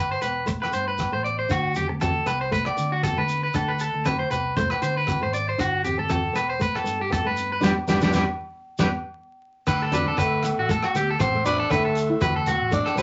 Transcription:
Already playing: G1
0.11 C5
0.22 E1 B3 B4, closed hi-hat, low agogo, shekere
0.46 A3, muted clean electric guitar stroke, kick, shekere
0.62 B4, cross-stick, low agogo
0.71 G2 B3 C5, closed hi-hat, shekere
0.88 B4
0.98 B3, kick, cross-stick, low agogo, shekere
1.12 A1 A3 C5
1.24 D5, closed hi-hat
1.39 C5
1.49 D2 D4 F#4, kick, cross-stick, muted conga, low agogo, shekere
1.75 G4, closed hi-hat, high conga, shekere
1.89 D2 C4, muted clean electric guitar stroke
2.01 A4, kick, cross-stick, high conga, low agogo, shekere
2.26 C2 B3 B4, cross-stick, closed hi-hat, low agogo, shekere
2.41 C5
2.52 A3 B4, kick, muted conga, shekere
2.65 D5, cross-stick, low agogo
2.77 D3 B3, closed hi-hat, muted conga, shekere
2.92 F#4
3.03 B3 A4, kick, cross-stick, high conga, low agogo, shekere
3.17 D3 A3 B4
3.29 closed hi-hat, muted conga, shekere
3.43 B4
3.54 D2 D4 A4, kick, cross-stick, muted conga, low agogo, shekere
3.68 B4
3.79 A4, closed hi-hat, shekere
3.94 D2, muted steel-string acoustic guitar stroke
4.05 B4, kick, cross-stick, high conga, low agogo, shekere
4.19 C5
4.31 C2 B3 B4, closed hi-hat, low conga, low agogo, shekere
4.57 A3 C5, kick, muted conga, high conga, shekere
4.70 B4, cross-stick, low agogo
4.82 D3 B3 C5, closed hi-hat, muted conga, shekere
4.97 B4
5.07 B3, kick, cross-stick, high conga, low agogo, shekere
5.21 G#1 A3 C5
5.33 D5, closed hi-hat, muted conga, shekere
5.49 C5
5.58 G1 D4 F#4, kick, cross-stick, muted conga, low agogo, shekere
5.84 G4, closed hi-hat, high conga, shekere
5.98 G1 C4 A4
6.10 A4, kick, cross-stick, high conga, low agogo, shekere
6.33 E1 B3 B4, cross-stick, closed hi-hat, low agogo, shekere
6.49 C5
6.60 A3 B4, kick, muted conga, shekere
6.75 A4, cross-stick, low agogo
6.84 G2 B3, closed hi-hat, muted conga, shekere
7.01 G4
7.10 B3 A4, kick, cross-stick, high conga, low agogo, shekere
7.24 G2 A3 B4
7.37 closed hi-hat, muted conga, shekere
7.52 B4
7.61 G1 G3 B3 D4 G4 B4 D5, kick, snare, high conga, low agogo, shekere
7.88 G1 G3 B3 D4 G4 B4 D5, kick, snare, high conga, low agogo, shekere
8.01 G1 G3 B3 D4 G4 B4 D5, kick, snare, high conga, low agogo, shekere
8.13 G1 G3 B3 D4 G4 B4 D5, kick, snare, high conga, low agogo, shekere
8.78 G1 G3 B3 D4 G4 B4 D5, kick, snare, high conga, low agogo, shekere
9.67 D2 D4 B4 F#5 D6 E6, kick, cross-stick, crash, muted conga, low agogo, shekere
9.82 A4
9.92 D4 B4, closed hi-hat, high conga, shekere
10.06 C4 A4
10.17 D2 A3 B4, kick, cross-stick, muted conga, low agogo, shekere
10.43 B3, cross-stick, closed hi-hat, low agogo, shekere
10.58 A1 F#4
10.69 A3 A4, kick, muted conga, shekere
10.82 F#4, cross-stick, low agogo
10.94 D2 B3 G4, closed hi-hat, muted conga, shekere
11.10 A4
11.20 A1 B3 C5, kick, cross-stick, high conga, low agogo, shekere
11.35 A3
11.45 D4 B4, closed hi-hat, high conga, shekere
11.60 A4
11.70 D2 A3 D4 B4 C6, kick, cross-stick, low agogo, shekere
11.85 A4
11.95 closed hi-hat, shekere
12.10 E4
12.21 D2 B4, kick, cross-stick, muted conga, high conga, low agogo, shekere
12.36 A4
12.46 B3 F#4, closed hi-hat, low conga, low agogo, shekere
12.60 A1
12.71 A3 D4, kick, muted conga, shekere
12.86 A4, cross-stick, low agogo
12.96 D2 B3 C4 B4, closed hi-hat, muted conga, high conga, shekere

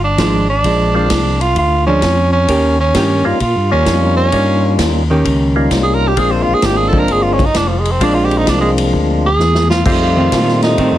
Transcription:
Already playing: G1
0.04 D4
0.18 G#1 F3 G#3 D4, kick, snare, hi-hat pedal, ride
0.50 D4
0.64 A#1 F3 G#3 D4, kick, ride
0.94 G#3 A#3 C4 D4 F4
1.10 C2, kick, snare, hi-hat pedal, ride
1.41 F4, ride
1.56 D2 F4, kick, ride
1.87 F3 G#3 C#4 D4
2.02 F2, kick, snare, hi-hat pedal, ride
2.33 C#4
2.48 D#2 D#3 A#3 C#4 G4, kick, ride
2.80 C#4
2.94 G2 D#3 A#3 C#4 G4, kick, snare, hi-hat pedal, ride
3.24 G2 G3 A#3 C#4 D#4 F4
3.40 A#2 F4, kick, ride
3.56 G2
3.71 D#2 G3 A#3 C#4 D#4 F4
3.86 F2, kick, snare, hi-hat pedal, ride
4.17 C#4
4.32 G2 G3 A#3 C#4 D#4 F4, kick, ride
4.78 D#2, kick, snare, hi-hat pedal, ride
5.10 D#3 A#3 C#4 G4
5.25 C#2, kick, ride
5.56 G3 A#3 C#4 D#4 F4
5.71 C2, kick, snare, hi-hat pedal, ride
5.84 G#4
5.95 A#4
6.08 G4
6.16 A#1 G#3 A#3 C4 D4 F4 G#4, kick, ride
6.31 C4
6.43 F4
6.47 A#1
6.55 G#4
6.62 G#1 G4, kick, snare, hi-hat pedal, ride
6.78 G#4
6.89 F3 A4, kick
6.93 G#3 D4
6.99 A#4
7.08 G1, kick, ride
7.12 G#4
7.23 F4
7.33 C#4
7.39 kick, ride
7.46 D#4
7.54 F1 D4, kick, snare, hi-hat pedal, ride
7.68 F3
7.80 G#3
7.85 ride
7.92 C4
8.00 A#1 F3 G#3 A#3 C4 D4 F4, kick, ride
8.15 F4
8.25 G4
8.31 ride
8.38 D#4
8.46 C2 D4, kick, snare, hi-hat pedal, ride
8.61 G#3
8.78 ride
8.93 D2, kick
9.27 G#4
9.38 E2, snare, hi-hat pedal
9.55 snare
9.70 F4, snare
9.85 F2 G3 A3 C4 D#4 F4, kick, crash
10.16 D#3 A3 C4
10.32 A#2, kick, snare, hi-hat pedal, ride
10.48 snare
10.62 D#4, snare, ride
10.78 A2 D#3 A3 C4, kick, ride
10.91 F2

